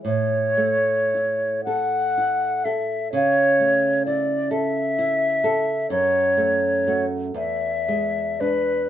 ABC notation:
X:1
M:6/8
L:1/8
Q:3/8=41
K:A
V:1 name="Flute"
c3 f2 e | c2 d e3 | c2 z e2 B |]
V:2 name="Nylon-string guitar"
A,, A, E A E A | C, A, E A E A | F,, A, [A,F] E,, G, [G,D] |]